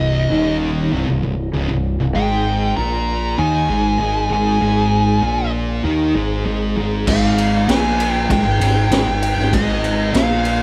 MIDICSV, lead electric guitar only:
0, 0, Header, 1, 2, 480
1, 0, Start_track
1, 0, Tempo, 615385
1, 1676, Time_signature, 4, 2, 24, 8
1, 8288, End_track
2, 0, Start_track
2, 0, Title_t, "Lead electric guitar"
2, 0, Program_c, 0, 29
2, 0, Note_on_c, 0, 75, 98
2, 443, Note_off_c, 0, 75, 0
2, 1681, Note_on_c, 0, 79, 100
2, 2128, Note_off_c, 0, 79, 0
2, 2159, Note_on_c, 0, 82, 105
2, 2641, Note_on_c, 0, 80, 100
2, 2653, Note_off_c, 0, 82, 0
2, 3367, Note_off_c, 0, 80, 0
2, 3376, Note_on_c, 0, 80, 97
2, 4296, Note_off_c, 0, 80, 0
2, 5526, Note_on_c, 0, 77, 100
2, 6001, Note_off_c, 0, 77, 0
2, 6004, Note_on_c, 0, 80, 111
2, 6324, Note_off_c, 0, 80, 0
2, 6324, Note_on_c, 0, 79, 111
2, 6448, Note_off_c, 0, 79, 0
2, 6491, Note_on_c, 0, 79, 104
2, 7190, Note_off_c, 0, 79, 0
2, 7200, Note_on_c, 0, 79, 112
2, 7439, Note_on_c, 0, 75, 98
2, 7443, Note_off_c, 0, 79, 0
2, 7908, Note_off_c, 0, 75, 0
2, 7911, Note_on_c, 0, 77, 97
2, 8288, Note_off_c, 0, 77, 0
2, 8288, End_track
0, 0, End_of_file